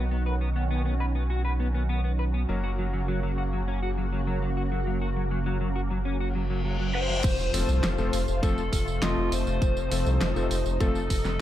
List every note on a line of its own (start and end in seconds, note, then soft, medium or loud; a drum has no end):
0.00 2.46 B1 medium
0.00 2.45 D#3 medium
0.00 2.45 F#3 medium
0.00 2.45 B3 medium
0.00 2.45 D#4 medium
0.00 2.45 F#4 medium
0.00 2.45 B4 medium
0.11 0.22 B3 medium
0.11 2.47 C#4 medium
0.26 0.34 B4 medium
0.41 0.48 B3 medium
0.56 0.63 B3 medium
0.71 0.82 B3 medium
0.86 0.93 B3 medium
1.00 1.05 B4 medium
1.15 1.23 B3 medium
1.30 1.41 F#4 medium
1.45 1.52 B4 medium
1.60 1.67 B3 medium
1.74 1.82 B3 medium
1.89 2.01 B3 medium
2.04 2.12 B3 medium
2.19 2.24 B4 medium
2.34 2.41 B3 medium
2.49 7.21 F#1 medium
2.49 7.20 C#3 medium
2.49 2.60 F#3 medium
2.49 7.20 F#3 medium
2.49 7.21 F#3 medium
2.49 7.20 A#3 medium
2.49 7.21 A#3 medium
2.49 7.21 C#4 medium
2.49 7.20 F#4 medium
2.49 7.21 F#4 medium
2.49 7.21 A#4 medium
2.64 2.71 F#4 medium
2.79 2.86 F#3 medium
2.93 3.01 F#3 medium
3.08 3.19 F#3 medium
3.23 3.31 F#3 medium
3.38 3.42 F#4 medium
3.53 3.60 F#3 medium
3.68 3.79 C#4 medium
3.83 3.90 F#4 medium
3.98 4.05 F#3 medium
4.12 4.20 F#3 medium
4.27 4.38 F#3 medium
4.42 4.49 F#3 medium
4.57 4.61 F#4 medium
4.72 4.79 F#3 medium
4.87 4.98 F#3 medium
5.02 5.09 F#4 medium
5.16 5.24 F#3 medium
5.31 5.39 F#3 medium
5.46 5.57 F#3 medium
5.61 5.68 F#3 medium
5.76 5.80 F#4 medium
5.91 5.98 F#3 medium
6.05 6.16 C#4 medium
6.05 reverse cymbal medium
6.20 6.28 F#4 medium
6.35 6.43 F#3 medium
6.50 6.61 F#3 medium
6.65 6.76 F#3 medium
6.80 6.91 F#3 medium
6.95 6.99 F#4 loud
6.95 8.43 C5 medium
7.10 7.14 F#3 medium
7.24 7.36 F1 loud
7.24 11.41 C3 medium
7.24 11.41 F3 medium
7.24 11.41 A3 medium
7.24 9.59 F4 medium
7.24 kick loud
7.24 closed hi-hat loud
7.24 crash loud
7.24 tambourine soft
7.24 impact medium
7.39 7.51 F1 medium
7.39 tambourine soft
7.54 7.66 F1 medium
7.54 7.95 F3 medium
7.54 7.95 A3 medium
7.54 7.95 C4 medium
7.54 7.95 F4 medium
7.54 7.95 A4 medium
7.54 open hi-hat medium
7.54 tambourine medium
7.69 7.81 C2 medium
7.69 tambourine soft
7.84 7.96 F1 loud
7.84 snare loud
7.84 closed hi-hat loud
7.84 tambourine soft
7.98 8.11 F1 medium
7.98 8.16 F3 medium
7.98 8.16 A3 medium
7.98 8.16 C4 medium
7.98 8.16 F4 medium
7.98 8.16 A4 loud
7.98 tambourine soft
8.13 8.26 F1 medium
8.13 open hi-hat medium
8.13 tambourine medium
8.28 8.40 F1 medium
8.28 tambourine soft
8.43 8.55 F1 loud
8.43 8.60 F3 medium
8.43 8.60 A3 medium
8.43 8.60 C4 medium
8.43 8.60 F4 medium
8.43 8.60 A4 loud
8.43 9.04 A4 medium
8.43 kick loud
8.43 closed hi-hat medium
8.43 tambourine soft
8.58 8.70 F1 medium
8.58 tambourine soft
8.73 8.85 F1 medium
8.73 kick medium
8.73 open hi-hat medium
8.73 tambourine medium
8.88 9.00 F1 medium
8.88 tambourine soft
9.02 9.15 F1 loud
9.02 9.88 F3 medium
9.02 9.88 A3 medium
9.02 9.88 C4 medium
9.02 9.88 F4 medium
9.02 9.33 F4 medium
9.02 9.88 D#5 loud
9.02 snare loud
9.02 closed hi-hat loud
9.02 tambourine soft
9.18 9.30 F1 medium
9.32 9.44 F1 loud
9.32 10.80 C5 loud
9.32 open hi-hat medium
9.32 tambourine medium
9.47 9.59 F1 medium
9.47 tambourine soft
9.61 9.74 F1 loud
9.61 11.41 D#4 medium
9.61 kick loud
9.61 closed hi-hat loud
9.61 tambourine soft
9.77 9.89 F1 medium
9.77 tambourine soft
9.91 10.04 F1 loud
9.91 10.33 F3 medium
9.91 10.33 A3 medium
9.91 10.33 C4 medium
9.91 10.33 F4 medium
9.91 10.33 A4 medium
9.91 open hi-hat medium
9.91 tambourine medium
10.06 10.19 C2 medium
10.06 tambourine soft
10.21 10.33 F1 loud
10.21 snare loud
10.21 closed hi-hat loud
10.21 tambourine soft
10.36 10.48 F1 medium
10.36 10.53 F3 medium
10.36 10.53 A3 medium
10.36 10.53 C4 medium
10.36 10.53 F4 medium
10.36 10.53 A4 loud
10.36 tambourine soft
10.51 10.63 F1 medium
10.51 open hi-hat medium
10.51 tambourine medium
10.66 10.78 F1 medium
10.66 tambourine soft
10.80 10.93 F1 loud
10.80 10.98 F3 loud
10.80 10.98 A3 medium
10.80 10.98 C4 medium
10.80 10.98 F4 medium
10.80 10.98 A4 loud
10.80 11.41 A4 medium
10.80 kick loud
10.80 closed hi-hat loud
10.80 tambourine soft
10.95 11.08 F1 medium
10.95 tambourine soft
11.10 11.23 F1 medium
11.10 kick medium
11.10 open hi-hat medium
11.10 tambourine medium
11.25 11.37 F1 medium
11.25 snare soft
11.25 tambourine soft